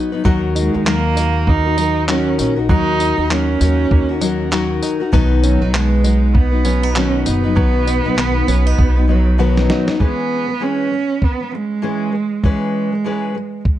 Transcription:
Already playing: F#3 B3 D#4 F#4 B4
0.12 F#3 B3 D#4 B4
0.24 D#2 D#3 F#3 D#4 F#4 A#4, kick
0.55 G#3 D#4, tambourine
0.73 D#2 D#4 F#4 A#4
0.85 D#3 F#3 A#3 D#4 F#4 A#4, clap
1.16 F#3 D#4 F#4 A#4, tambourine
1.47 A#3 D#4, kick
1.65 D#4 F#4 A#4
1.77 F#3 D#4 F#4 A#4, tambourine
2.08 D#3 F#3 C#4 D#4 F#4 A#4, clap
2.38 A#1 C#4 D#4, tambourine
2.56 D#4 F#4 A#4
2.69 D#2 D#3 F#3 D#4 F#4 A#4, kick
3.00 D#4, tambourine
3.17 D#2 D#4 F#4 A#4
3.30 D#3 F#3 A#3 C#4 D#4 F#4 A#4, clap
3.59 D#2 F#3 D#4 F#4 A#4, tambourine
3.91 D#2 A#3, kick
4.09 D#4 F#4 A#4
4.21 F#3 D#4 F#4 A#4, tambourine
4.51 D#3 F#3 D#4 F#4 A#4, clap
4.82 D#4, tambourine
5.00 D#4 F#4 A#4
5.12 B1 B2 D#3 F#3 B3 D#4 B4, kick
5.43 F#3 C#4, tambourine
5.61 B1 F#3 B3 D#4 B4
5.73 B2 D#3 F#3 G#3 B3 D#4 B4, clap
6.04 F#3 B3 D#4 B4, tambourine
6.35 B3, kick
6.52 F#3 B3 D#4 B4
6.64 F#3 B3 C#4 D#4 B4, tambourine
6.83 D#4
6.95 B2 D#3 F#3 B3 C#4 D#4 F#4 B4, clap
7.26 F#1 B3 D#4, tambourine
7.43 F#3 B3 D#4 B4
7.55 B1 B2 D#3 F#3 B3 D#4 B4, kick
7.87 D#4, tambourine
8.04 B1 F#3 B3 D#4 B4
8.16 B2 D#3 F#3 B3 D#4 B4, clap
8.47 B1 F#3 B3 C#4 D#4 B4, tambourine
8.67 D#4
8.78 B1 B3, kick
8.96 F#3 B3 D#4 B4
9.08 F#3 B3 D#4 B4
9.38 B2 D#3 F#3 B3 D#4 F#4 B4
9.57 snare
9.70 D#4, snare
9.87 F#3 B3 D#4 B4, snare
10.00 E3 G#3 B3 C#4 G#4 B4, kick
10.48 E3 G#3
10.60 E3 G#3 C#4 G#4 B4
10.91 E3 G#3
11.22 B3, kick
11.40 E3 G#3
11.52 E3 G#3
11.82 E3 G#3 C#4 G#4 B4
12.12 E3 G#3
12.44 E3 G#3 C#4 G#4 B4, kick
12.92 E3 G#3
13.04 E3 G#3 C#4 G#4 B4
13.35 E3 G#3
13.65 kick

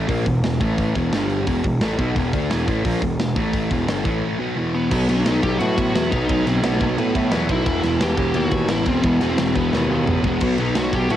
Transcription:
0.07 A#1 A#2 F3 A#3, kick, open hi-hat
0.25 E1 E2 B2, kick, open hi-hat
0.44 E1 E2 B2, snare, open hi-hat
0.60 A1 A2 E3 A3, kick, open hi-hat
0.78 kick, open hi-hat
0.95 E1 E2 B2 E3, kick, open hi-hat
1.12 G1 G2 D3 G3, snare, open hi-hat
1.30 open hi-hat
1.47 E1 E2 B2 E3, kick, open hi-hat
1.64 E1 E2 B2, kick, open hi-hat
1.81 A1 A2 E3 A3, snare, open hi-hat
1.99 B1 B2 F#3 B3, kick, open hi-hat
2.15 E1 E2 B2 E3, kick, open hi-hat
2.32 D2 D3 A3 D4, kick, open hi-hat
2.50 E1 E2 B2 E3, snare, open hi-hat
2.68 A1 A2 E3 A3, kick, open hi-hat
2.85 A#1 A#2 F3 A#3, kick, open hi-hat
3.02 E1 E2 B2, kick
3.19 E1 E2 B2, snare, open hi-hat
3.36 A1 A2 E3 A3, kick, open hi-hat
3.54 kick, open hi-hat
3.71 E1 E2 B2 E3, kick, open hi-hat
3.87 G1 G2 D3 G3, snare, open hi-hat
4.04 A1 A2 E3 A3, kick, open hi-hat
4.39 B2 F#3 B3
4.56 E2 B2 E3
4.75 B3
4.91 B1 B2 F#3 B3, kick, crash
5.08 B1 B2 F#3 B3 D#4, ride
5.25 B1 B2 F#3 B3, snare, ride
5.43 B1 B2 F#3 B3 G4, kick, ride
5.59 A2 B2 F#3 B3 F#4, ride
5.78 A2 B2 F#3 B3, kick, ride
5.95 E2 B2 F#3 B3, snare, ride
6.11 B1 B2 F#3 B3 D#4, kick, ride
6.28 B1 B2 F#3 B3, kick, ride
6.46 B1 B2 F#3 B3 C4, snare, ride
6.63 B1 B2 F#3 B3, snare, ride
6.73 A3
6.80 B1 B2 F#3 B3, kick, ride
6.97 A2 B2 F#3 B3, ride
7.15 A2 B2 F#3 B3, kick, ride
7.31 E2 B2 F#3 B3, snare, ride
7.49 B1 B2 F#3 B3 E4, kick, ride
7.66 E1 E2 B2 E3, kick, ride
7.83 E1 E2 B2 E3, snare, ride
8.00 E1 E2 B2 E3 G4, snare, ride
8.17 E1 E2 B2 E3, kick, ride
8.34 D#2 E2 B2 E3 F#4, ride
8.51 D#2 E2 B2 E3, kick, ride
8.68 A1 E2 B2 E3 E4, snare, ride
8.86 E1 E2 B2 E3 C4, kick, ride
9.03 E1 E2 B2 E3 B3, kick, ride
9.21 E1 E2 B2 E3, snare, ride
9.30 C4
9.38 E1 E2 B2 E3, snare, ride
9.55 E1 E2 B2 E3 B3, kick, ride
9.73 D#2 E2 B2 E3, snare
9.89 D#2 E2 B2 E3 B3
10.06 A1 E2 B2 E3, mid tom
10.24 E1 E2 B2 E3 B3, kick
10.40 B1 B2 F#3 B3, kick, crash
10.58 B1 B2 F#3 B3 D#4, ride
10.75 B1 B2 F#3 B3 F#4, snare, ride
10.93 B1 B2 F#3 B3 G4, kick, ride
11.10 A2 B2 F#3 B3 F#4, ride

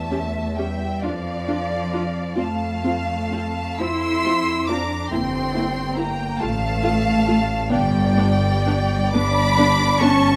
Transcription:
Already playing: E2 A3 E5 A5
0.11 C#4 G4
0.55 G3 C#4 G4 E5 G5
1.02 F2 F3 D4 F4 D5 F5
1.48 D4 F4
1.92 D4 F4
2.36 F2 A3 C4 F4 F5 A5
2.83 C4 F4
3.32 C4 F4
3.79 F2 C4 E4 F4 C6 E6
4.25 C4 F4
4.67 C4 D4 F4 A#5 D6
5.10 G1 A#3 C4 E4 G5 C6
5.54 A#3 E4
5.95 A#3 E4 G5 A#5
6.38 A1 A3 F4 F5 A5
6.83 A3 F4
7.27 A3 F4
7.71 G1 G3 B3 D4 D5 G5
8.17 B3 D4
8.66 B3 D4
9.13 G1 B3 D4 B5 D6
9.58 B3 D4
9.99 B3 C#4 D4 A5 C#6

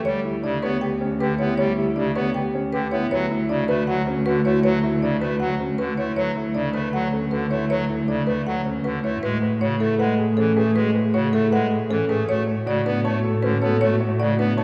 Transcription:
Already playing: F#4 B4
0.05 D2 G3 G4 C#5
0.25 E4 G4
0.44 C#3 D4 G4 D5
0.63 B3 G4 B4 C#5
0.81 G4 G5
1.01 C#4 G4
1.20 D3 G4 B4
1.39 B3 E4 G4 C#5
1.58 G3 G4 C#5
1.77 E4 G4
1.96 C#3 D4 G4 D5
2.16 B3 G4 B4 C#5
2.34 G4 G5
2.54 C#4 G4
2.73 D3 G4 B4
2.92 B3 E4 C#5
3.11 D2 F#3 F#4 B4 C#5
3.30 E4 F#4
3.49 C#3 D4 F#4 D5
3.68 A3 F#4 B4
3.87 F#3 F#4 F#5
4.06 C#4 F#4
4.25 D3 F#4 B4
4.45 A3 E4 F#4 C#5
4.63 F#3 F#4 B4 C#5
4.83 E4 F#4
5.02 C#3 D4 F#4 D5
5.21 A3 F#4 B4
5.40 F#3 F#4 F#5
5.59 C#4 F#4
5.78 D3 F#4 B4
5.97 A3 E4 C#5
6.16 D2 F#3 A4 B4 C#5
6.36 E4 A4
6.55 C#3 D4 A4 D5
6.73 A3 A4 B4
6.93 F#3 F#4 A4 F#5
7.12 C#4 A4
7.31 D3 F#4 A4 B4
7.50 A3 E4 A4 C#5
7.70 F#3 A4 B4 C#5
7.88 E4 A4
8.08 C#3 D4 A4 D5
8.27 A3 A4 B4
8.46 F#3 F#4 A4 F#5
8.65 C#4 A4
8.84 D3 F#4 A4 B4
9.04 A3 E4 C#5
9.23 A2 G#3 F#4 G#4 B4
9.42 B4
9.61 C#3 F#4 C#5
9.80 A3 E4 A4
9.99 G#3 B4 F#5
10.19 G#4
10.37 E3 C#4 A4
10.57 A3 G#4 B4
10.76 G#3 F#4 B4
10.95 B4
11.14 C#3 F#4 C#5
11.33 A3 E4 A4
11.52 G#3 B4 F#5
11.71 G#4
11.90 E3 C#4 A4
12.09 A3 G#4 B4
12.28 A2 A3 F#4 C#5
12.48 C#5
12.66 C#3 F#4 D5
12.86 B3 D4 B4
13.05 A3 C#5 A5
13.24 A4
13.43 D3 C#4 B4
13.62 B3 A4 C#5
13.81 A3 F#4 C#5
14.00 C#5
14.19 C#3 F#4 D5
14.39 B3 D4 B4
14.57 A3 C#5 A5

